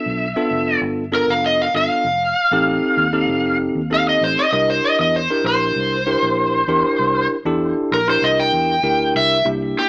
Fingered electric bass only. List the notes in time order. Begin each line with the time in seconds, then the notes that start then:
0.06 B1
0.51 F1
0.81 G1
1.28 F1
1.74 G1
2.04 F1
2.51 A1
2.97 D#2
3.27 F1
3.75 D#2
4.21 A1
4.52 C2
4.99 E2
5.44 A#1
5.76 C2
6.23 A#1
6.68 E2
6.99 C2
7.45 E2
7.92 A#1
8.22 C2
8.53 E2
8.83 D2
9.15 C2
9.45 C2